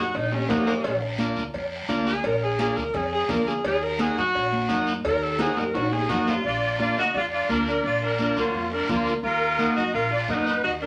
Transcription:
Already playing: F#2 F#4
0.14 A#1 D#4, cowbell, high conga, long guiro
0.32 C#4, low timbale
0.49 F#2 A#3 D#4 F#4, cowbell, high conga, low conga, low timbale, short guiro
0.66 A#3, low timbale, short guiro
0.84 A#1, cowbell, high conga, long guiro
1.18 A#3 D4 F4, cowbell, high conga, short guiro
1.36 D2, short guiro
1.53 F2, cowbell, high conga, long guiro
1.88 D2 A#3 D4 F4, cowbell, high conga, short guiro
2.06 G#4, short guiro
2.24 A#1 A#4, cowbell, long guiro
2.42 G#4
2.59 A#3 D4 F4 G#4, cowbell, high conga, short guiro
2.76 D2 A#4, short guiro
2.94 F2 G#4, cowbell, high conga, low conga, long guiro
3.12 G#4
3.28 D2 A#3 D4 F4 A#4, cowbell, high conga, low conga, short guiro
3.46 G#4, short guiro
3.64 D#2 G#4, cowbell, high conga, long guiro
3.82 A#4
3.98 A#3 D#4 F#4 G#4, cowbell, high conga, short guiro
4.17 F#2 F#4, short guiro
4.34 A#1, cowbell, high conga, long guiro
4.52 high conga
4.68 F#2 A#3 D#4 F#4, cowbell, high conga, short guiro
4.86 short guiro
5.04 D#2 A#4, cowbell, high conga, long guiro
5.22 A4
5.39 A#3 D#4 F#4 G#4, cowbell, high conga, high timbale, short guiro
5.57 F#2 A#4, low timbale, short guiro
5.74 A#1 F#4, cowbell, high conga, high timbale, long guiro
5.92 G#4, low timbale
6.08 F#2 A#3 D#4 F#4, cowbell, high conga, low conga, short guiro
6.27 F4, low timbale, short guiro
6.44 A#1 D4 F4 D5, high conga, long guiro
6.79 A#3 D4 F4 D5, high conga, short guiro
6.97 D2 D#4 F#4 D#5, short guiro
7.14 F2 D4 F4 D5, high conga, long guiro
7.31 D4 F4 D5
7.49 D2 A#3 D4 F4 A#4, high conga, short guiro
7.66 A#3 D4 A#4, short guiro
7.84 A#1 D4 F4 D5, high conga, long guiro
8.02 A#3 D4 A#4
8.19 A#3 D4 F4 A#4, high conga, short guiro
8.36 D2 F#3 A#3 F4, short guiro
8.53 F2, high conga, long guiro
8.72 A#3 D4 A#4
8.89 D2 F3 A#3 D4 F4, high conga, low conga, short guiro
9.06 short guiro
9.23 D#2 A#3 F4 A#4, high conga, long guiro
9.59 A#3 D#4 F#4, high conga, short guiro
9.76 F#2 D#4 F#4 D#5, short guiro
9.93 A#1 A#3 F4 A#4, high conga, long guiro
10.10 D4 F4 D5
10.28 F#2 A#3 D#4 F#4 A#4, high conga, short guiro
10.33 D4 D#4 A#4
10.38 B3 B4
10.45 B3 D#4 B4, short guiro
10.62 D#2 D#4 F#4 D#5, high conga, long guiro
10.80 A#3 D4 A#4

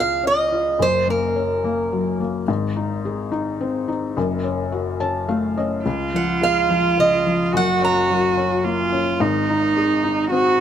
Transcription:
Already playing: C#2 C#3 F4 G#4
0.00 F5
0.23 C#4 D#5
0.52 F4
0.79 F#1 F#2 C5
1.08 A#3 A#4
1.36 C#4
1.64 A#3
1.92 F#3
2.20 A#3
2.48 G#1 G#2
2.76 D#4
3.05 G#4
3.32 D#4
3.61 C4
3.88 D#4
4.17 F#1 F#2
4.44 C#4
4.72 F#4
5.00 C#4 A5
5.28 A3 F5
5.58 C#4 D#5
5.85 C#2 F4
6.14 F3 F#5
6.41 G#3 F5
6.70 F3
6.98 C#3 D#5
7.26 F3
7.46 F4
7.52 F#1 F#2 F#4
7.57 F#5
7.82 C#4 A#5
8.10 F#3
8.37 C#4
8.64 A#3 F4
8.92 C#4
9.20 G#1 G#2 D#4
9.49 D#4
9.77 G#4
10.04 D#4
10.31 C4 F#4

